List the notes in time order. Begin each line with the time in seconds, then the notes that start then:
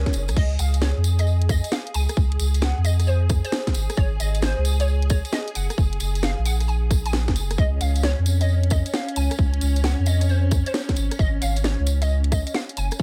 Already playing: G#4 A#4, swell
0.06 kick, snare, closed hi-hat
0.13 F#1, closed hi-hat, tambourine
0.28 C#2, cross-stick, closed hi-hat, tambourine
0.36 C#2 G#4 D#5, kick, tambourine, crash
0.59 C#2 F5, closed hi-hat, tambourine
0.74 closed hi-hat, tambourine
0.82 C#5, snare, tambourine
0.97 F2
1.04 closed hi-hat, tambourine
1.19 D#5, cross-stick, closed hi-hat, tambourine
1.27 tambourine
1.42 closed hi-hat
1.49 D#5, kick, cross-stick, closed hi-hat, tambourine
1.64 closed hi-hat, tambourine
1.72 F5, snare, tambourine
1.87 closed hi-hat
1.94 C#2 G#5, closed hi-hat, tambourine
2.09 cross-stick, closed hi-hat, tambourine
2.17 C#2, kick
2.32 closed hi-hat
2.40 C#2, closed hi-hat, tambourine
2.54 closed hi-hat, tambourine
2.61 F#5, snare, tambourine
2.77 F2
2.85 D#5, closed hi-hat, tambourine
3.00 cross-stick, closed hi-hat, tambourine
3.07 C5, tambourine
3.29 kick, cross-stick, closed hi-hat, tambourine
3.44 C5, closed hi-hat, tambourine
3.52 snare, tambourine
3.67 kick, snare, closed hi-hat
3.74 G#1, closed hi-hat, tambourine
3.90 cross-stick, closed hi-hat, tambourine
3.97 G#1 C#5, kick, tambourine
4.20 G#1 D#5, closed hi-hat, tambourine
4.34 closed hi-hat, tambourine
4.42 C5, snare, tambourine
4.57 C#2
4.65 closed hi-hat, tambourine
4.80 C#5, cross-stick, closed hi-hat, tambourine
4.88 tambourine
5.02 closed hi-hat
5.10 C#5, kick, cross-stick, closed hi-hat, tambourine
5.25 closed hi-hat, tambourine
5.33 D#5, snare, tambourine
5.48 closed hi-hat
5.55 F#1 F#5, closed hi-hat, tambourine
5.70 cross-stick, closed hi-hat, tambourine
5.78 F#1, kick, tambourine
5.93 closed hi-hat
6.00 F#1, closed hi-hat, tambourine
6.15 closed hi-hat, tambourine
6.23 F5, snare, tambourine
6.38 A#1
6.45 F#5, closed hi-hat, tambourine
6.60 cross-stick, closed hi-hat, tambourine
6.68 G#5, tambourine
6.91 kick, cross-stick, closed hi-hat, tambourine
7.05 G#5, closed hi-hat, tambourine
7.13 snare, tambourine
7.28 F#1, kick, snare, closed hi-hat
7.36 closed hi-hat, tambourine
7.50 cross-stick, closed hi-hat, tambourine
7.58 C#2 C#4 D#5, kick, tambourine
7.81 C#2 F5, closed hi-hat, tambourine
7.95 closed hi-hat, tambourine
8.03 C#5, snare, tambourine
8.18 F2
8.26 closed hi-hat, tambourine
8.41 D#5, cross-stick, closed hi-hat, tambourine
8.49 tambourine
8.63 closed hi-hat
8.70 D#5, kick, cross-stick, closed hi-hat, tambourine
8.86 closed hi-hat, tambourine
8.94 F5, snare, tambourine
9.09 closed hi-hat
9.16 C#2 G#5, closed hi-hat, tambourine
9.31 cross-stick, closed hi-hat, tambourine
9.39 C#2, kick
9.54 closed hi-hat
9.61 C#2, closed hi-hat, tambourine
9.76 closed hi-hat, tambourine
9.84 F#5, snare, tambourine
9.99 F2
10.06 D#5, closed hi-hat, tambourine
10.21 cross-stick, closed hi-hat, tambourine
10.29 C5, tambourine
10.51 kick, cross-stick, closed hi-hat, tambourine
10.66 C5, closed hi-hat, tambourine
10.74 snare, tambourine
10.89 kick, snare, closed hi-hat
10.96 G#1, closed hi-hat, tambourine
11.11 cross-stick, closed hi-hat, tambourine
11.19 G#1 D#5, kick, tambourine
11.42 G#1 F5, closed hi-hat, tambourine
11.56 closed hi-hat, tambourine
11.64 C#5, snare, tambourine
11.79 C#2
11.87 closed hi-hat, tambourine
12.02 D#5, cross-stick, closed hi-hat, tambourine
12.09 tambourine
12.24 closed hi-hat
12.32 D#5, kick, cross-stick, closed hi-hat, tambourine
12.47 closed hi-hat, tambourine
12.54 F5, snare, tambourine
12.69 closed hi-hat
12.77 F#1 G#5, closed hi-hat, tambourine
12.91 cross-stick, closed hi-hat, tambourine
12.99 tambourine